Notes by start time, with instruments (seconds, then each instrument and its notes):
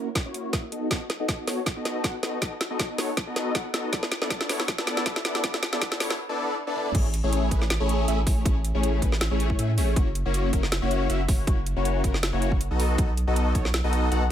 Already playing: sub bass F#1
0.15 kick, snare, closed hi-hat
0.25 sub bass F#1, analog polysynth A#3 C#4 E4 F#4 C#5
0.34 closed hi-hat
0.53 sub bass F#1, analog polysynth A#3 C#4 E4 F#4 E5, kick, snare, closed hi-hat
0.72 sub bass B1, analog polysynth B3 D#4 F#4 A4 D#5, closed hi-hat
0.91 sub bass B1, analog polysynth B3 D#4 F#4 D#5, kick, snare, closed hi-hat
1.10 snare, closed hi-hat
1.20 sub bass B1, analog polysynth B3 D#4 F#4 A4 D#5
1.28 kick, snare, closed hi-hat
1.47 sub bass B1, analog polysynth B3 D#4 F#4 A4 C#5, snare, open hi-hat
1.66 kick, snare, closed hi-hat
1.76 sub bass B1, analog polysynth B3 D#4 F#4 A4 D#5
1.85 snare, closed hi-hat
2.04 sub bass B1, analog polysynth B3 D#4 F#4 A4 F#5, kick, snare, closed hi-hat
2.23 sub bass B1, analog polysynth B3 D#4 F#4 A4 D#5, snare, closed hi-hat
2.41 sub bass B1, analog polysynth D#4 F#4 A4 D#5, kick, snare, closed hi-hat
2.61 snare, closed hi-hat
2.70 sub bass B1, analog polysynth B3 D#4 F#4 A4 D#5
2.79 kick, snare, closed hi-hat
2.98 sub bass B1, analog polysynth B3 D#4 F#4 A4 C#5, snare, open hi-hat
3.17 kick, snare, closed hi-hat
3.27 sub bass B1, analog polysynth B3 D#4 F#4 A4 D#5
3.36 snare, closed hi-hat
3.55 sub bass B1, analog polysynth B3 D#4 F#4 F#5, kick, snare, closed hi-hat
3.74 sub bass B1, analog polysynth B3 D#4 F#4 A4 D#5, snare, closed hi-hat
3.92 sub bass E1, analog polysynth B3 D4 E4 A4 D5, kick, snare, closed hi-hat
4.03 snare
4.12 snare, closed hi-hat
4.22 sub bass E1, analog polysynth B3 D4 E4 A4 D5, snare
4.30 kick, snare, closed hi-hat
4.41 snare
4.49 sub bass E1, analog polysynth B3 D4 E4 A4 C#5, snare, open hi-hat
4.60 snare
4.68 kick, snare, closed hi-hat
4.78 sub bass E1, analog polysynth B3 D4 E4 A4 D5, snare
4.87 snare, closed hi-hat
4.97 snare
5.06 analog polysynth B3 D4 E4 A4 E5, kick, snare, closed hi-hat
5.16 snare
5.25 sub bass E1, analog polysynth B3 D4 E4 A4 D5, snare, closed hi-hat
5.35 snare
5.44 analog polysynth D4 E4 A4 D5, kick, snare, closed hi-hat
5.54 snare
5.63 snare, closed hi-hat
5.73 analog polysynth B3 D4 E4 A4 D5, snare
5.81 kick, snare, closed hi-hat
5.92 snare
6.00 analog polysynth B3 D4 E4 A4 C#5, snare, open hi-hat
6.10 snare
6.29 analog polysynth B3 D4 E4 A4 D5
6.67 analog polysynth B3 D4 E4 A4 D5
6.76 high tom
6.86 mid tom
6.95 sub bass A1, analog polysynth A3 C#4 E4 G#4, kick, closed hi-hat, crash
7.14 closed hi-hat
7.24 sub bass A1, analog polysynth A3 C#4 E4 G#4 C#5
7.33 closed hi-hat
7.51 sub bass A1, analog polysynth A3 C#4 E4 G#4 B4, kick, closed hi-hat
7.62 snare
7.70 snare, closed hi-hat
7.80 sub bass A1, analog polysynth A3 C#4 E4 G#4 C#5
7.89 closed hi-hat
8.08 sub bass A1, analog polysynth A3 C#4 E4 G#4 E5, closed hi-hat
8.27 sub bass A1, analog polysynth A3 C#4 E4 C#5, kick, open hi-hat
8.45 sub bass A1, analog polysynth A3 C#4 E4 G#4 C#5, kick, closed hi-hat
8.65 closed hi-hat
8.75 sub bass A1, analog polysynth A3 C#4 E4 G#4 C#5
8.83 closed hi-hat
9.02 sub bass A1, analog polysynth A3 C#4 E4 G#4 B4, kick, closed hi-hat
9.12 snare
9.21 snare, closed hi-hat
9.31 sub bass A1, analog polysynth A3 C#4 E4 G#4 C#5
9.40 closed hi-hat
9.50 kick
9.59 sub bass A2, analog polysynth A3 C#4 E4 G#4 E5, closed hi-hat
9.77 sub bass A1, analog polysynth A3 C#4 E4 G#4 C#5, open hi-hat
9.96 sub bass F#1, analog polysynth A#3 C#4 E4 F#4 C#5, kick, closed hi-hat
10.15 closed hi-hat
10.25 sub bass F#1, analog polysynth A#3 C#4 E4 F#4 C#5
10.34 closed hi-hat
10.53 sub bass F#1, analog polysynth A#3 C#4 E4 F#4 A#4, kick, closed hi-hat
10.63 snare
10.72 snare, closed hi-hat
10.82 sub bass F#1, analog polysynth A#3 C#4 E4 F#4 C#5
10.91 closed hi-hat
11.09 sub bass F#1, analog polysynth A#3 C#4 E4 F#4 E5, closed hi-hat
11.28 sub bass F#1, analog polysynth A#3 C#4 E4 F#4 C#5, kick, open hi-hat
11.47 sub bass F#1, analog polysynth A#3 C#4 E4 F#4 C#5, kick, closed hi-hat
11.66 closed hi-hat
11.76 sub bass F#1, analog polysynth A#3 C#4 E4 F#4 C#5
11.85 closed hi-hat
12.04 sub bass F#1, analog polysynth A#3 E4 A#4, kick, closed hi-hat
12.14 snare
12.23 snare, closed hi-hat
12.33 sub bass F#1, analog polysynth A#3 C#4 E4 F#4 C#5
12.42 closed hi-hat
12.52 kick
12.61 closed hi-hat
12.71 sub bass B1, analog polysynth B3 D#4 F#4 A4 D#5
12.80 open hi-hat
12.98 sub bass B1, analog polysynth B3 F#4, kick, closed hi-hat
13.17 closed hi-hat
13.27 sub bass B1, analog polysynth B3 D#4 F#4 A4 D#5
13.36 closed hi-hat
13.55 sub bass B1, analog polysynth B3 D#4 F#4 A4 C#5, kick, closed hi-hat
13.65 snare
13.74 snare, closed hi-hat
13.84 sub bass B1, analog polysynth B3 D#4 F#4 A4 D#5
13.93 closed hi-hat
14.11 sub bass B1, analog polysynth B3 D#4 F#4 A4 F#5, closed hi-hat